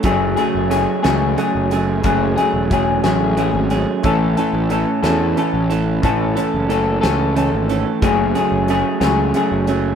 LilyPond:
<<
  \new Staff \with { instrumentName = "Clean electric guitar" } { \time 6/8 \key fis \minor \tempo 4. = 60 <fis a cis' gis'>8 <fis a cis' gis'>8 <fis a cis' gis'>8 <fis a cis' gis'>8 <fis a cis' gis'>8 <fis a cis' gis'>8 | <fis a cis' gis'>8 <fis a cis' gis'>8 <fis a cis' gis'>8 <fis a cis' gis'>8 <fis a cis' gis'>8 <fis a cis' gis'>8 | <e a cis' a'>8 <e a cis' a'>8 <e a cis' a'>8 <e a cis' a'>8 <e a cis' a'>8 <e a cis' a'>8 | <e a cis' a'>8 <e a cis' a'>8 <e a cis' a'>8 <e a cis' a'>8 <e a cis' a'>8 <e a cis' a'>8 |
<fis a cis' gis'>8 <fis a cis' gis'>8 <fis a cis' gis'>8 <fis a cis' gis'>8 <fis a cis' gis'>8 <fis a cis' gis'>8 | }
  \new Staff \with { instrumentName = "Clean electric guitar" } { \time 6/8 \key fis \minor <fis, cis fis a cis' gis'>8 <fis a cis' gis'>8 <fis a cis' gis'>8 <fis, cis fis a cis' gis'>8 <fis a cis' gis'>4 | <fis, cis fis a cis' gis'>8 <fis a cis' gis'>8 <fis a cis' gis'>8 <fis, cis fis a cis' gis'>8 <fis a cis' gis'>4 | <a, e a cis' a'>8 <a cis' a'>8 <e a cis' a'>8 <a, e a cis' a'>8 <e a cis' a'>4 | <a, e a cis' a'>8 <a cis' a'>8 <e a cis' a'>8 <a, e a cis' a'>8 <e a cis' a'>4 |
<fis, cis fis a cis' gis'>8 <fis a cis' gis'>8 <fis a cis' gis'>8 <fis, cis fis a cis' gis'>8 <fis a cis' gis'>4 | }
  \new Staff \with { instrumentName = "Picked electric bass" } { \clef bass \time 6/8 \key fis \minor fis,,8 r16 fis,,8 r16 cis,8 r16 fis,,8. | fis,,8 r16 e,,8. a,,8. gis,,8 r16 | a,,8 r16 a,,8 r16 e,8 r16 a,,8. | a,,8 r16 fis,,8. cis,8. gis,,8 r16 |
fis,,8 r16 fis,,8 r16 cis,8 r16 fis,,8. | }
  \new DrumStaff \with { instrumentName = "Drums" } \drummode { \time 6/8 <hh bd>8 hh8 hh8 <hh sn>8 hh8 hh8 | <hh bd>8 hh8 <hh bd>8 <hh sn>8 hh8 hh8 | <hh bd>8 hh8 hh8 <hh sn>8 hh8 hh8 | <hh bd>8 hh8 hh8 <hh sn>8 hh8 hh8 |
<hh bd>8 hh8 hh8 <hh sn>8 hh8 hh8 | }
>>